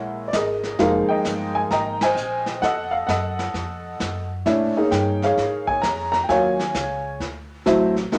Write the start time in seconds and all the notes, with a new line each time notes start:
Already playing: A#1 G#3 A#3 C#4 E4 A#4 C#5 F#5
0.28 D5
0.33 G#1 G#4 A#4 D#5, kick, snare, hi-hat pedal
0.63 snare
0.79 F1 F3 G#3 A#3 D#4 G#4 A#4 F5, brush sweep, kick, snare
1.08 A#4 D#5 G5, muted upright bass stroke
1.24 G1, kick, snare, hi-hat pedal
1.55 G#5
1.70 G#1 D#5 G5 A#5, brush sweep, kick, snare
2.01 C5 D#5 G#5, snare, ride
2.15 A#1, hi-hat pedal
2.46 snare
2.62 F2 A4 D#5 F#5, brush sweep, kick, snare
2.91 F5
3.07 F#2 A4 D#5 F#5, kick, snare, hi-hat pedal
3.39 snare
3.54 F2, brush sweep, kick, snare
4.00 F#2, kick, snare, hi-hat pedal
4.45 A#2 A3 C#4 D4 E4, brush sweep, kick, snare
4.77 A#3 C#4 D#4 G#4
4.91 G2 G5, kick, snare, hi-hat pedal
5.22 G#4 C#5 F5, snare
5.37 G#2, brush sweep, kick, snare
5.67 G#5, kick
5.82 F2 A#5, kick, snare, hi-hat pedal
6.12 A#5, snare
6.24 G5
6.29 D#2 F#3 A#3 C#4 F4 C#5 F5 G#5, brush sweep, kick, snare
6.59 snare
6.74 C#2, kick, snare, hi-hat pedal
7.20 D2, brush sweep, kick, snare
7.66 A1 F#3 A3 C4 E4, kick, snare, hi-hat pedal
7.96 snare
8.12 C#2 G#3 A#3 D#4 F4, brush sweep, kick, snare